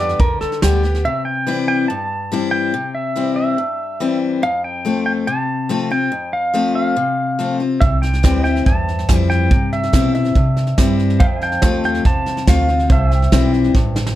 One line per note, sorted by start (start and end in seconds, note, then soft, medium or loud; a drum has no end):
0.00 0.19 F2 medium
0.00 0.16 G2 medium
0.00 0.17 D3 medium
0.00 0.18 G3 medium
0.00 0.18 B3 loud
0.00 0.18 G4 medium
0.00 1.03 B4 medium
0.00 0.19 D5 medium
0.00 1.03 D5 medium
0.00 1.04 G5 medium
0.09 snare soft
0.20 0.40 E2 medium
0.20 0.61 D3 loud
0.20 0.41 A#4 loud
0.20 kick loud
0.20 snare soft
0.41 0.62 A4 medium
0.41 muted upright bass stroke soft
0.41 snare soft
0.52 snare soft
0.62 1.03 D2 medium
0.62 0.83 D3 medium
0.62 0.83 G3 medium
0.62 0.83 B3 loud
0.62 1.03 G4 medium
0.62 0.82 G4 loud
0.62 snare loud
0.62 hi-hat pedal medium
0.83 1.05 B3 medium
0.83 1.04 G4 medium
0.83 snare soft
0.95 snare soft
1.05 1.85 C3 medium
1.05 1.25 E5 loud
1.25 1.67 G5 loud
1.47 1.87 E3 medium
1.47 1.87 G3 loud
1.47 1.88 C4 loud
1.47 1.88 E4 loud
1.68 1.88 G5 loud
1.88 2.70 G2 loud
1.88 2.48 A5 loud
2.32 2.72 E3 loud
2.32 2.72 G3 loud
2.32 2.72 C4 loud
2.32 2.73 E4 loud
2.51 2.96 G5 loud
2.74 3.54 C3 medium
2.95 3.35 E5 medium
3.16 3.56 E3 medium
3.16 3.56 G3 loud
3.16 3.57 C4 loud
3.16 3.57 E4 loud
3.36 4.17 E5 medium
3.58 4.39 G2 medium
4.00 4.41 E3 loud
4.00 4.41 G3 loud
4.00 4.41 C4 loud
4.00 4.42 E4 loud
4.43 5.23 F2 loud
4.43 4.63 F5 loud
4.64 5.05 G5 loud
4.85 5.25 F3 medium
4.85 5.26 A3 loud
4.85 5.26 C4 loud
4.85 5.26 F4 loud
5.06 5.12 G5 medium
5.27 6.08 C3 medium
5.27 5.91 A5 loud
5.69 5.90 F3 loud
5.69 5.90 A3 loud
5.69 5.91 C4 loud
5.69 5.89 F4 loud
5.90 6.12 C4 medium
5.90 6.11 F4 medium
5.90 6.35 G5 loud
6.12 6.93 F2 medium
6.33 6.74 F5 loud
6.54 6.94 F3 medium
6.54 6.95 A3 loud
6.54 6.95 C4 loud
6.54 6.95 F4 loud
6.75 7.56 F5 medium
6.96 7.77 C3 loud
7.39 7.59 F3 medium
7.39 7.60 A3 medium
7.39 7.60 C4 loud
7.39 7.59 F4 loud
7.60 7.82 C4 medium
7.60 7.81 F4 medium
7.81 8.23 C2 medium
7.81 8.62 C3 medium
7.81 8.01 E5 medium
7.81 kick loud
7.81 snare soft
8.02 8.43 G5 medium
8.02 snare soft
8.13 snare soft
8.23 8.65 D2 medium
8.23 8.44 E3 loud
8.23 8.44 G3 loud
8.23 8.45 C4 loud
8.23 8.44 E4 loud
8.23 8.44 B4 medium
8.23 8.50 D5 medium
8.23 11.18 G5 medium
8.23 kick medium
8.23 snare loud
8.23 hi-hat pedal loud
8.44 8.66 C4 medium
8.44 8.65 E4 medium
8.44 11.17 C5 medium
8.44 8.64 G5 medium
8.44 snare soft
8.50 11.18 E5 medium
8.56 snare soft
8.66 9.07 E2 medium
8.66 9.47 G2 loud
8.66 9.16 A5 medium
8.66 kick loud
8.66 snare soft
8.88 snare soft
8.99 snare soft
9.09 9.50 F2 loud
9.09 9.49 E3 medium
9.09 9.49 G3 medium
9.09 9.49 C4 loud
9.09 9.50 E4 loud
9.09 kick loud
9.09 snare loud
9.09 hi-hat pedal loud
9.16 9.29 G5 medium
9.30 9.73 G5 loud
9.30 snare soft
9.51 9.92 G2 medium
9.51 10.32 C3 medium
9.51 kick loud
9.51 snare soft
9.73 10.14 E5 medium
9.73 snare soft
9.83 snare soft
9.93 10.34 B2 loud
9.93 10.13 E3 loud
9.93 10.14 G3 medium
9.93 10.14 C4 loud
9.93 10.13 E4 loud
9.93 kick loud
9.93 snare loud
9.93 hi-hat pedal loud
10.15 10.36 C4 medium
10.15 10.35 E4 medium
10.15 10.95 E5 medium
10.15 snare soft
10.25 snare soft
10.35 11.16 G2 medium
10.35 10.77 C3 medium
10.35 kick loud
10.35 snare soft
10.56 snare soft
10.67 snare soft
10.78 11.19 G2 loud
10.78 11.18 E3 loud
10.78 11.19 G3 medium
10.78 11.19 C4 loud
10.78 11.19 E4 loud
10.78 kick loud
10.78 snare loud
10.78 hi-hat pedal loud
10.99 snare soft
11.10 snare soft
11.20 11.61 F2 loud
11.20 12.88 C5 medium
11.20 11.41 E5 medium
11.20 11.26 F5 loud
11.20 11.47 G5 medium
11.20 kick loud
11.20 snare soft
11.41 12.89 F5 medium
11.41 11.84 G5 medium
11.41 snare soft
11.47 12.89 A5 medium
11.52 snare soft
11.62 12.04 D#2 loud
11.62 12.03 F3 medium
11.62 12.03 A3 loud
11.62 12.03 C4 loud
11.62 12.04 F4 loud
11.62 kick medium
11.62 snare loud
11.62 hi-hat pedal medium
11.84 12.06 G5 medium
11.84 snare soft
11.95 snare soft
12.05 12.46 E2 medium
12.05 12.86 C3 loud
12.05 12.49 A5 loud
12.05 kick loud
12.05 snare soft
12.26 snare soft
12.37 snare soft
12.47 12.89 D2 loud
12.47 12.68 F3 medium
12.47 12.68 A3 loud
12.47 12.68 C4 loud
12.47 12.67 F4 loud
12.47 12.92 F5 medium
12.47 kick loud
12.47 snare loud
12.47 hi-hat pedal loud
12.68 12.90 C4 medium
12.68 12.89 F4 medium
12.68 snare soft
12.79 snare soft
12.90 13.31 C2 loud
12.90 13.70 C3 medium
12.90 14.15 C5 medium
12.90 13.51 E5 medium
12.90 13.11 F5 medium
12.90 13.17 A5 medium
12.90 kick loud
12.90 snare soft
13.11 14.15 E5 medium
13.11 snare soft
13.17 14.15 G5 medium
13.22 snare soft
13.32 13.73 B1 medium
13.32 13.72 E3 loud
13.32 13.73 G3 loud
13.32 13.73 C4 loud
13.32 13.73 E4 loud
13.32 kick medium
13.32 snare loud
13.32 hi-hat pedal loud
13.54 snare soft
13.64 snare soft
13.75 14.15 A1 medium
13.75 14.15 G2 medium
13.75 kick loud
13.75 snare medium
13.96 snare medium
14.07 snare medium